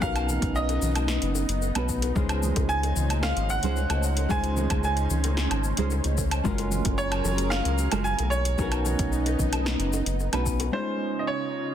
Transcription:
Already playing: analog synth pad B3 D#4
0.00 analog synth bass B1, nylon-string guitar B3 C#4 D#4 F#4 A#4, grand piano F5, kick, high bongo, shaker
0.16 closed hi-hat, low woodblock, shaker
0.29 high bongo, high conga, low conga, shaker
0.42 analog synth bass B1, kick, closed hi-hat, shaker
0.55 grand piano D#5, shaker
0.69 closed hi-hat, high bongo, shaker
0.82 analog synth bass B1, low conga, shaker
0.95 closed hi-hat, high bongo, high conga, low woodblock, shaker
1.08 snare, shaker
1.22 analog synth bass F#1, closed hi-hat, shaker
1.35 high bongo, high conga, shaker
1.49 analog synth bass F#1, closed hi-hat, shaker
1.62 high bongo, shaker
1.75 analog synth bass B1, nylon-string guitar B3 C#4 D#4 F#4 B4, closed hi-hat, high conga, low woodblock, shaker
1.89 kick, shaker
2.02 closed hi-hat, high bongo, shaker
2.15 analog synth bass C#2, analog synth pad C#3 C#4 C5, nylon-string guitar G#3 C#4 D#4 F4 C5, kick, high bongo, shaker
2.29 closed hi-hat, low woodblock, shaker
2.43 high conga, low conga, shaker
2.56 analog synth bass C#2, kick, closed hi-hat, high bongo, shaker
2.69 grand piano G#5, shaker
2.83 closed hi-hat, high bongo, shaker
2.96 analog synth bass C#2, low conga, shaker
3.09 closed hi-hat, high conga, low woodblock, shaker
3.23 grand piano F5, snare, high bongo, shaker
3.37 analog synth bass G#1, closed hi-hat, shaker
3.50 grand piano F#5, high bongo, high conga, shaker
3.63 analog synth bass C#2, nylon-string guitar G#3 C#4 D#4 F4 C5, closed hi-hat, shaker
3.76 shaker
3.90 analog synth bass C#2, closed hi-hat, high bongo, high conga, low woodblock, shaker
4.03 shaker
4.17 closed hi-hat, high bongo, shaker
4.28 analog synth bass C#2, nylon-string guitar G#3 C#4 D#4 F4 C5, grand piano G#5, kick, shaker
4.44 closed hi-hat, shaker
4.57 high bongo, high conga, low conga, shaker
4.70 analog synth bass C#2, kick, closed hi-hat, low woodblock, shaker
4.83 grand piano G#5, high bongo, shaker
4.97 closed hi-hat, shaker
5.10 analog synth bass C#2, low conga, shaker
5.24 closed hi-hat, high bongo, high conga, shaker
5.37 snare, shaker
5.51 analog synth bass G#1, closed hi-hat, high bongo, low woodblock, shaker
5.64 high conga, shaker
5.77 analog synth bass C#2, nylon-string guitar G#3 C#4 D#4 F4 C5, closed hi-hat, shaker
5.90 high bongo, shaker
6.04 analog synth bass C#2, closed hi-hat, high conga, shaker
6.18 kick, high bongo, shaker
6.31 closed hi-hat, low woodblock, shaker
6.44 analog synth bass F#1, analog synth pad F#3 G#4 A#4, nylon-string guitar G#3 C#4 F4 F#4 A#4, kick, shaker
6.58 closed hi-hat, high bongo, shaker
6.71 high conga, low conga, shaker
6.85 analog synth bass F#1, kick, closed hi-hat, high bongo, shaker
6.98 grand piano C#5, shaker
7.12 closed hi-hat, low woodblock, shaker
7.24 analog synth bass F#1, high bongo, low conga, shaker
7.38 closed hi-hat, high conga, shaker
7.50 grand piano F5, snare, high bongo, shaker
7.65 analog synth bass C#2, closed hi-hat, shaker
7.78 high conga, shaker
7.92 analog synth bass F#1, nylon-string guitar G#3 C#4 F4 F#4 A#4, closed hi-hat, high bongo, low woodblock, shaker
8.04 grand piano G#5, shaker
8.19 analog synth bass B1, closed hi-hat, high bongo, high conga, shaker
8.30 analog synth pad B3 D#4, grand piano C#5, shaker
8.45 closed hi-hat, shaker
8.58 analog synth bass B1, nylon-string guitar B3 C#4 D#4 F#4 A#4, kick, high bongo, shaker
8.72 closed hi-hat, low woodblock, shaker
8.85 high bongo, high conga, low conga, shaker
8.99 analog synth bass B1, kick, closed hi-hat, shaker
9.12 shaker
9.26 closed hi-hat, high bongo, shaker
9.39 analog synth bass B1, kick, low conga, shaker
9.53 closed hi-hat, high bongo, high conga, low woodblock, shaker
9.66 snare, shaker
9.79 analog synth bass F#1, closed hi-hat, shaker
9.93 high bongo, high conga, shaker
10.06 analog synth bass F#1, closed hi-hat, shaker
10.20 high bongo, shaker
10.33 analog synth bass B1, nylon-string guitar B3 C#4 D#4 F#4 B4, closed hi-hat, high conga, low woodblock, shaker
10.46 kick, shaker
10.60 closed hi-hat, high bongo, shaker
10.71 analog synth pad C#3 D#4 F4 D#5, nylon-string guitar G#3 C#4 D#4 F4 D#5, grand piano C5
11.19 grand piano D#5
11.27 grand piano C#5

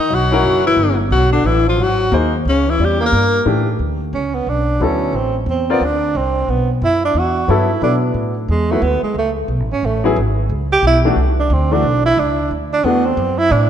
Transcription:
Already playing: tenor saxophone D#3 D#4
0.10 upright bass B1, tenor saxophone F#3
0.15 tenor saxophone F#4
0.31 grand piano C#4 E4 F#4 A#4
0.43 upright bass F#1
0.67 tenor saxophone E3 E4
0.76 upright bass G1
1.11 upright bass B1, tenor saxophone F#4
1.15 tenor saxophone F#3
1.32 tenor saxophone D3 D4
1.44 upright bass A1, tenor saxophone E3 E4
1.67 tenor saxophone F3 F4
1.78 upright bass G#1, tenor saxophone F#3
1.83 tenor saxophone F#4
2.12 upright bass D#2, grand piano A#3 D#4 G#4 C5
2.45 upright bass C#2, tenor saxophone C#3 C#4
2.67 tenor saxophone E3 E4
2.79 upright bass E2, tenor saxophone G3
2.85 tenor saxophone G4
3.00 tenor saxophone A#3
3.06 tenor saxophone A#4
3.12 upright bass G2
3.45 upright bass A2, grand piano E3 A3 D4 G4
3.79 upright bass D2
4.13 upright bass C#2, tenor saxophone C#4
4.35 tenor saxophone B3
4.47 upright bass B1, tenor saxophone D4
4.80 upright bass D2, grand piano F#3 B3 E4 A4, tenor saxophone C#4
5.13 upright bass A1, tenor saxophone C4
5.46 upright bass E2
5.50 tenor saxophone C4
5.70 tenor saxophone B3, grand piano C4 F4 A#4 D5
5.81 upright bass D2, tenor saxophone D4
6.15 upright bass C2, tenor saxophone C4
6.48 upright bass B1, tenor saxophone B3
6.82 upright bass F#2, tenor saxophone E4
7.05 tenor saxophone D4
7.14 upright bass E2, tenor saxophone F#4
7.48 upright bass G2, grand piano F#3 B3 E4 A4, tenor saxophone E4
7.82 upright bass B2, grand piano F#3 B3 E4 A4, tenor saxophone D4
8.14 upright bass A2
8.48 upright bass E2, tenor saxophone G#3
8.71 grand piano F#3 B3 E4 B4, tenor saxophone A3
8.82 upright bass D2, tenor saxophone B3
9.02 tenor saxophone G#3, muted upright bass stroke
9.14 upright bass C#2
9.18 tenor saxophone A3
9.48 upright bass B1
9.60 upright bass A1
9.72 upright bass G#1, tenor saxophone C#4
9.83 upright bass A1, tenor saxophone A3
10.04 grand piano F#3 B3 E4 G#4
10.16 upright bass G#1
10.49 upright bass C#2
10.72 tenor saxophone G4
10.82 upright bass B1
10.87 tenor saxophone E4
11.05 grand piano E3 A3 D4 F#4
11.16 upright bass C2
11.40 tenor saxophone D4
11.50 upright bass D2, tenor saxophone C4
11.71 grand piano E3 A3 D4 F#4, tenor saxophone D4
11.83 upright bass B1
12.05 tenor saxophone E4
12.17 upright bass C#2, tenor saxophone D4
12.51 upright bass D2
12.73 tenor saxophone D4
12.84 upright bass E2, grand piano E3 A3 D4 F#4, tenor saxophone B3
13.05 tenor saxophone C4
13.17 upright bass F#2
13.38 tenor saxophone E4
13.51 upright bass A2, tenor saxophone D4

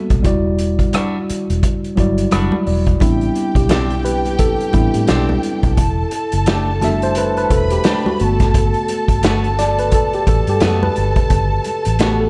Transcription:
Already playing: tine electric piano G3 A#3 B3 F#4 A4
0.10 fingered electric bass B1, kick, closed hi-hat
0.22 fingered electric bass E1, tine electric piano G3 E4 F#4, kick, closed hi-hat, muted conga
0.26 tine electric piano D5
0.59 closed hi-hat
0.79 kick, closed hi-hat
0.93 clean electric guitar G3 D4 F#4, cross-stick, closed hi-hat, high conga
1.30 muted fingered electric bass stroke, closed hi-hat
1.50 fingered electric bass E1, closed hi-hat
1.63 kick, closed hi-hat
1.84 closed hi-hat
1.96 fingered electric bass G1, tine electric piano F#3 E4 F#4, kick, closed hi-hat, muted conga
2.00 tine electric piano G3 D5
2.18 closed hi-hat
2.31 fingered electric bass F#1, clean electric guitar G3 D4 F#4, tine electric piano B5, cross-stick, closed hi-hat, high conga
2.52 high conga
2.67 fingered electric bass E1, tine electric piano D5, open hi-hat
2.86 kick, closed hi-hat
3.00 fingered electric bass A1, tine electric piano G3 B3 C4 D4 E4, violin section G4 G5, kick, closed hi-hat, muted conga
3.21 closed hi-hat
3.35 closed hi-hat
3.55 fingered electric bass B1, tine electric piano G4, kick, closed hi-hat
3.69 clean electric guitar C4 D4 G4, snare, closed hi-hat, high conga
3.90 closed hi-hat
4.05 tine electric piano B4, closed hi-hat
4.25 closed hi-hat
4.39 tine electric piano A4, kick, closed hi-hat
4.60 closed hi-hat
4.73 fingered electric bass A1, tine electric piano G3 B3 C4 D4 E4, kick, closed hi-hat, muted conga
4.94 fingered electric bass A2, closed hi-hat
5.07 fingered electric bass B1, clean electric guitar C4 D4 G4, snare, closed hi-hat, high conga
5.29 high conga
5.43 closed hi-hat
5.63 fingered electric bass B1, kick, closed hi-hat
5.77 fingered electric bass E1, violin section A4 A5, kick, closed hi-hat, muted conga
6.11 closed hi-hat
6.32 fingered electric bass F#1, closed hi-hat
6.46 clean electric guitar A3 D4 G4, snare, closed hi-hat, high conga
6.81 tine electric piano G3 A3 D4 F#4 E5, snare, closed hi-hat, low conga
7.02 tine electric piano C5, closed hi-hat
7.15 tine electric piano B4, closed hi-hat
7.37 tine electric piano B4, closed hi-hat
7.50 fingered electric bass E1, tine electric piano A4, violin section B4 B5, kick, closed hi-hat, muted conga
7.70 tine electric piano G4, closed hi-hat
7.84 clean electric guitar A3 D4 G4, snare, closed hi-hat, high conga
8.06 tine electric piano F#4, high conga
8.19 fingered electric bass G1, tine electric piano A3 B3 F#4, violin section A4 A5, closed hi-hat
8.40 kick, snare, closed hi-hat
8.54 kick, closed hi-hat, muted conga
8.74 closed hi-hat
8.88 closed hi-hat, muted conga
9.08 fingered electric bass G1, kick, closed hi-hat
9.23 clean electric guitar A3 B3 F#4, snare, closed hi-hat, high conga
9.44 closed hi-hat
9.59 tine electric piano D5, snare, closed hi-hat
9.79 tine electric piano B4, closed hi-hat
9.92 tine electric piano A4, kick, closed hi-hat
10.13 tine electric piano G4, closed hi-hat
10.27 fingered electric bass A1, tine electric piano A4, kick, closed hi-hat, muted conga
10.47 fingered electric bass G2, tine electric piano G4, closed hi-hat
10.60 fingered electric bass F#2, clean electric guitar A3 B3 F#4, snare, closed hi-hat, high conga
10.83 tine electric piano B4, high conga
10.96 fingered electric bass G1, closed hi-hat
11.16 kick, closed hi-hat
11.30 fingered electric bass G1, kick, closed hi-hat, muted conga
11.64 closed hi-hat, muted conga
11.85 fingered electric bass A1, closed hi-hat
11.99 tine electric piano A3 B3 F#4 G4, clean electric guitar A3 B3 F#4, snare, closed hi-hat, high conga
12.20 tine electric piano A4

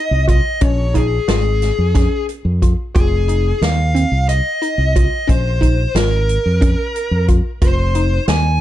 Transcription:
Already playing: synth arpeggio sound D#4, lead electric guitar D#5
0.11 fingered electric bass C2
0.28 synth arpeggio sound F4, lead electric guitar D#5, kick, closed hi-hat
0.61 fingered electric bass A#1, synth arpeggio sound C#4, lead electric guitar C#5, kick, closed hi-hat
0.94 synth arpeggio sound D#4, lead electric guitar G#4, kick, closed hi-hat
1.28 fingered electric bass G#1, synth arpeggio sound F4, lead electric guitar G#4, snare, closed hi-hat
1.62 snare, closed hi-hat
1.78 fingered electric bass F2
1.95 synth arpeggio sound C#4, kick, snare, closed hi-hat
2.29 closed hi-hat
2.45 fingered electric bass F2
2.62 synth arpeggio sound F4, kick, closed hi-hat
2.95 fingered electric bass F1, synth arpeggio sound F4, lead electric guitar G#4, kick, closed hi-hat
3.28 synth arpeggio sound D#4, closed hi-hat
3.61 fingered electric bass D#2, lead electric guitar F5, snare, closed hi-hat
3.95 synth arpeggio sound C4, closed hi-hat
4.12 fingered electric bass C2
4.29 lead electric guitar D#5, closed hi-hat
4.62 synth arpeggio sound D#4, closed hi-hat
4.78 fingered electric bass C2
4.96 synth arpeggio sound F4, lead electric guitar D#5, kick, closed hi-hat
5.27 fingered electric bass A#1, synth arpeggio sound C#4, lead electric guitar C5, kick, closed hi-hat
5.61 synth arpeggio sound D#4, kick, closed hi-hat
5.95 fingered electric bass G#1, synth arpeggio sound F4, lead electric guitar A#4, snare, closed hi-hat
6.29 closed hi-hat
6.46 fingered electric bass F2
6.61 synth arpeggio sound C#4, kick, closed hi-hat
6.96 closed hi-hat
7.11 fingered electric bass F2
7.28 synth arpeggio sound F4, kick, closed hi-hat
7.62 fingered electric bass F1, synth arpeggio sound F4, lead electric guitar C5, kick, closed hi-hat
7.95 synth arpeggio sound D#4, closed hi-hat
8.28 fingered electric bass D#2, lead electric guitar G#5, snare, closed hi-hat

